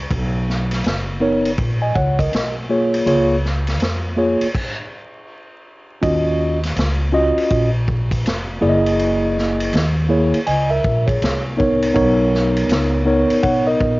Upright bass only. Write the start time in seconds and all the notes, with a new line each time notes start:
0.11 B1
0.84 F#1
1.58 A#1
1.95 C#2
2.32 B1
3.06 C#2
3.81 F2
4.41 muted upright bass stroke
6.03 D#2
6.76 C#2
7.37 muted upright bass stroke
7.51 A#1
8.25 F1
8.62 F#1
9.73 D#2
10.34 muted upright bass stroke
10.47 C#2
10.84 A#1
11.22 C2
11.95 B1
12.69 C#2
13.43 B1
13.80 A#1